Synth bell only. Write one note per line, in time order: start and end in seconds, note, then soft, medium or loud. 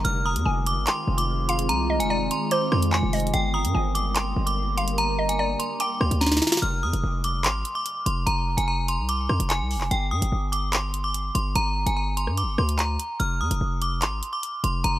0.05 0.21 F6 loud
0.26 0.64 D#6 medium
0.67 0.83 D6 medium
0.87 1.16 C6 medium
1.18 1.47 D6 medium
1.49 1.65 C6 medium
1.69 1.98 A#5 loud
2.00 2.08 G#5 medium
2.10 2.27 A#5 medium
2.31 2.48 C6 medium
2.52 2.68 D6 medium
2.72 2.89 C6 medium
2.92 3.31 G#5 medium
3.34 3.50 G5 medium
3.54 3.93 D#6 medium
3.95 4.12 D6 medium
4.16 4.45 C6 medium
4.47 4.76 D6 medium
4.77 4.94 C6 medium
4.98 5.27 A#5 loud
5.29 5.37 G#5 medium
5.39 5.56 A#5 medium
5.59 5.76 C6 medium
5.80 5.97 D6 medium
6.01 6.17 C6 medium
6.21 6.60 A#5 medium
6.62 6.79 F6 medium
6.83 7.22 D#6 medium
7.24 7.41 D6 medium
7.45 7.74 C6 medium
7.75 8.04 D6 medium
8.06 8.23 C6 medium
8.27 8.56 A#5 loud
8.57 8.66 G#5 medium
8.68 8.84 A#5 medium
8.89 9.05 C6 medium
9.09 9.26 D6 medium
9.29 9.46 C6 medium
9.50 9.88 G#5 medium
9.91 10.08 G5 medium
10.11 10.50 D#6 medium
10.52 10.69 D6 medium
10.73 11.02 C6 medium
11.04 11.33 D6 medium
11.35 11.52 C6 medium
11.56 11.85 A#5 loud
11.86 11.95 G#5 medium
11.97 12.13 A#5 medium
12.17 12.34 C6 medium
12.38 12.54 D6 medium
12.58 12.75 C6 medium
12.78 13.17 A#5 medium
13.20 13.36 F6 medium
13.41 13.79 D#6 medium
13.82 13.98 D6 medium
14.02 14.31 C6 medium
14.33 14.62 D6 medium
14.64 14.80 C6 medium
14.84 14.99 A#5 loud